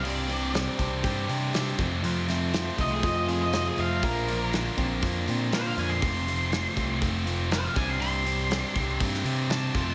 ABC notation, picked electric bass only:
X:1
M:4/4
L:1/8
Q:1/4=121
K:F
V:1 name="Picked electric bass" clef=bass
C,,3 C,, G,, C,2 F,, | F,,3 C,, F,,3 F,, | B,,,3 B,,, F,, B,,2 F,, | F,,,3 C,, F,,,3 C,,- |
C,,3 C,, G,, C,2 F,, |]